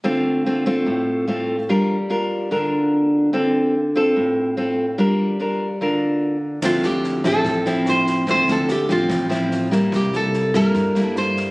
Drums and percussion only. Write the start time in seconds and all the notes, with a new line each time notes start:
6.62 kick, cross-stick, snare, crash
6.83 snare
7.04 snare
7.24 kick, cross-stick, snare
7.45 kick, snare
7.66 snare
7.86 cross-stick, snare
8.06 kick, snare
8.27 kick, snare
8.48 snare
8.69 cross-stick, snare
8.89 kick, snare
9.10 kick, cross-stick, snare
9.31 snare
9.51 snare
9.72 kick, snare
9.92 kick, cross-stick, snare
10.13 snare
10.34 snare
10.54 kick, cross-stick, snare
10.74 kick, snare
10.95 snare
11.16 cross-stick, snare
11.37 kick, snare